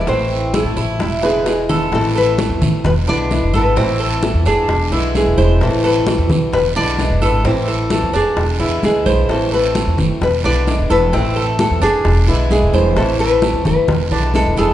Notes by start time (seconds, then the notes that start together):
0.01 D5
0.07 A1 E3 A3 C4 E4 C5, high bongo, high conga, long guiro
0.31 high conga
0.53 E3 A3 C4 E4 A4, high bongo, high conga, short guiro
0.65 A2
0.76 A1 E4, high bongo, high conga, short guiro
0.99 E1 E4, muted steel-string acoustic guitar stroke, high bongo, high conga, long guiro
1.23 D3 G#3 B3 E4 G#4 B4, high bongo
1.46 D3 G#3 B3 E4 G#4, high bongo, short guiro
1.69 D3 G#3 B3 E4 A4, low bongo, low conga, short guiro
1.92 A1 E3 A3 C4 E4 A4, high bongo, high conga, long guiro
2.15 A4 B4, high conga
2.38 E3 A3 C4 E4, high bongo, high conga, short guiro
2.50 E2
2.61 A2, high bongo, low conga, short guiro
2.84 E1 B4, muted steel-string acoustic guitar stroke, high bongo, high conga, low conga, long guiro
3.07 B1 D3 G#3 B3 D4 E4 D5, high bongo, high conga
3.30 D3 G#3 B3 E4, high bongo, low bongo, high conga, short guiro
3.42 E1
3.54 G#1 D3 G#3 B3 E4 A4 B4, high bongo, high conga, short guiro
3.76 A1 E3 A3 C4 E4, high bongo, high conga, long guiro
4.00 A4, high conga
4.22 E3 A3 C4 E4 A4, high bongo, high conga, short guiro
4.34 E2
4.45 F1 D4 G#4, high bongo, high conga, short guiro
4.68 E1, muted steel-string acoustic guitar stroke, high bongo, high conga, long guiro
4.91 B1 D3 G#3 B3 E4, high bongo, high conga
5.14 D3 G#3 B3 E4 G#4, high bongo, low bongo, high conga, short guiro
5.26 E1
5.37 E1 D3 G#3 B3 E4 C5, high bongo, high conga, short guiro
5.60 A1 E3 A3 C4 E4 A4, high bongo, high conga, long guiro
5.84 A4 B4, high conga
6.07 E3 A3 C4 E4, high bongo, high conga, short guiro
6.18 E2
6.30 B1, high bongo, low conga, short guiro
6.53 E1 B4, muted steel-string acoustic guitar stroke, high bongo, high conga, long guiro
6.76 B1 D3 G#3 B3 D4 E4 D5, high bongo, high conga
6.98 D3 G#3 B3 E4, high bongo, low bongo, high conga, short guiro
7.10 E1
7.22 G#1 D3 G#3 B3 E4 A4 B4, high bongo, short guiro
7.44 A1 E3 A3 C4 E4, high bongo, high conga, long guiro
7.68 A4, high conga
7.90 E3 A3 C4 E4 A4, high bongo, high conga, short guiro
8.02 E2
8.13 F1 D4 G#4, high bongo, high conga, short guiro
8.36 E1, muted steel-string acoustic guitar stroke, high bongo, high conga, long guiro
8.60 E2 D3 G#3 B3 E4, high bongo, high conga
8.83 D2 D3 G#3 B3 E4 G#4, high bongo, low bongo, high conga, short guiro
9.06 B1 D3 G#3 B3 E4 C5, high bongo, high conga, short guiro
9.28 A1 E3 A3 C4 E4 A4, high bongo, high conga, long guiro
9.52 A4 B4, high conga
9.75 E3 A3 C4 E4, high bongo, high conga, short guiro
9.87 E2
9.98 F1, high bongo, low conga, short guiro
10.21 E1 B4, muted steel-string acoustic guitar stroke, high bongo, high conga, long guiro
10.44 B1 D3 G#3 B3 D4 E4 D5, high bongo, high conga
10.66 D3 G#3 B3 E4, high bongo, low bongo, high conga, short guiro
10.79 E1
10.89 E1 D3 G#3 B3 E4 A4 B4, high bongo, short guiro
11.13 A1 E3 A3 C4 E4, high bongo, high conga, long guiro
11.36 A4, high conga
11.59 E3 A3 C4 E4 A4, high bongo, high conga, short guiro
11.71 E2
11.82 F1 D4 G#4, high bongo, high conga, short guiro
12.05 E1, muted steel-string acoustic guitar stroke, high bongo, high conga, long guiro
12.27 B1 D3 G#3 B3 E4, high bongo, high conga
12.50 D3 G#3 B3 E4 G#4, high bongo, low bongo, high conga, short guiro
12.62 E1
12.73 E1 D3 G#3 B3 E4 C5, high bongo, high conga, short guiro
12.96 A1 E3 A3 C4 E4 A4, high bongo, high conga, long guiro
13.19 A4 B4, high conga
13.42 E3 A3 C4 E4, high bongo, high conga, short guiro
13.54 E2
13.65 F1 B4, high bongo, low conga, short guiro
13.88 E1, muted steel-string acoustic guitar stroke, high bongo, high conga, low conga, long guiro
14.11 B1 D3 G#3 B3 D4 E4, high bongo, high conga
14.34 D3 G#3 B3 E4 A4, high bongo, low bongo, high conga, short guiro
14.46 E1
14.56 E1 D3 G#3 B3 E4 G#4 A4, high bongo, high conga, short guiro